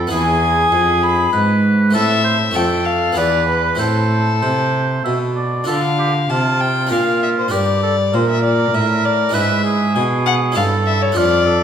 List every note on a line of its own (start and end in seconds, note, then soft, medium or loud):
0.00 0.11 F2 medium
0.00 0.10 A4 medium
0.07 0.68 B3 soft
0.07 1.89 E4 soft
0.07 1.90 G#4 soft
0.07 1.31 G#4 medium
0.12 0.68 E2 medium
0.12 0.71 E2 medium
0.12 1.05 G#5 medium
0.72 1.29 F2 medium
0.72 1.32 F2 medium
1.03 1.34 B5 medium
1.32 1.91 G#2 soft
1.32 1.96 G#2 medium
1.32 1.93 B4 medium
1.91 2.55 A2 medium
1.91 2.50 A3 soft
1.91 2.52 C4 soft
1.91 2.53 A4 soft
1.91 2.23 A4 medium
1.95 2.52 A2 soft
1.95 2.57 E5 medium
2.24 2.38 C5 medium
2.51 3.13 A3 soft
2.51 3.14 C4 soft
2.51 3.14 A4 soft
2.51 3.15 A4 medium
2.55 3.16 F2 medium
2.55 3.13 F2 soft
2.55 2.87 G5 medium
2.86 3.19 F5 medium
3.12 3.75 B3 soft
3.12 3.75 E4 soft
3.12 3.77 G#4 soft
3.17 3.78 E2 medium
3.17 3.75 E2 soft
3.17 3.78 B4 medium
3.17 3.48 D5 medium
3.49 3.81 B4 medium
3.75 5.62 C4 soft
3.75 5.63 E4 soft
3.75 5.63 A4 soft
3.75 4.35 C5 medium
3.79 4.44 A2 medium
3.79 4.39 A2 soft
3.79 5.37 A4 medium
4.41 5.05 C3 soft
4.41 5.02 C3 soft
4.41 5.01 C5 medium
5.05 5.67 B2 soft
5.05 5.64 B2 soft
5.05 5.19 E5 medium
5.36 5.67 D5 medium
5.64 6.85 D4 soft
5.64 6.86 F4 soft
5.64 6.87 A4 soft
5.64 5.81 A4 medium
5.68 6.26 D3 medium
5.68 6.26 D3 soft
5.68 6.31 F5 medium
5.98 6.12 G4 soft
6.29 6.87 C3 soft
6.29 6.93 C3 medium
6.29 6.90 F4 medium
6.29 6.62 A5 medium
6.60 6.94 G5 medium
6.87 7.47 D4 soft
6.87 7.49 F4 soft
6.87 7.53 F4 medium
6.87 7.50 A#4 soft
6.91 7.52 A#2 soft
6.91 7.48 A#2 soft
6.91 7.22 F5 medium
7.23 7.29 E5 medium
7.38 7.52 C5 medium
7.48 8.15 G2 medium
7.48 8.68 D4 soft
7.48 9.29 G4 soft
7.48 7.82 G4 soft
7.48 9.30 A#4 soft
7.53 8.09 G2 soft
7.53 8.16 D5 medium
7.83 7.97 A4 medium
8.13 8.74 A#2 medium
8.13 8.70 A#2 soft
8.13 9.36 A#4 medium
8.13 8.29 C5 medium
8.30 8.43 E5 medium
8.44 8.76 D5 medium
8.74 9.34 A2 medium
8.74 9.31 A2 soft
8.74 9.07 E5 medium
9.05 9.35 D5 medium
9.29 10.50 G#3 medium
9.29 10.50 D4 soft
9.29 10.51 E4 soft
9.34 9.98 G#2 medium
9.34 9.92 G#2 medium
9.34 10.52 B4 soft
9.34 9.64 B4 medium
9.34 9.95 E5 medium
9.64 10.54 G#4 medium
9.95 10.52 B2 medium
9.95 10.58 B2 medium
9.95 10.03 G#5 medium
10.26 10.34 F#5 medium
10.52 11.13 C#4 soft
10.52 11.13 E4 soft
10.52 11.14 A4 soft
10.52 10.64 F5 medium
10.56 11.13 G2 soft
10.56 11.16 G2 medium
10.56 11.18 A4 medium
10.86 11.04 E5 medium
11.02 11.16 C#5 medium
11.12 11.63 D4 medium
11.12 11.63 F4 medium
11.12 11.63 A4 soft
11.17 11.63 F2 medium
11.17 11.46 F4 medium
11.17 11.63 D5 medium
11.46 11.63 A4 medium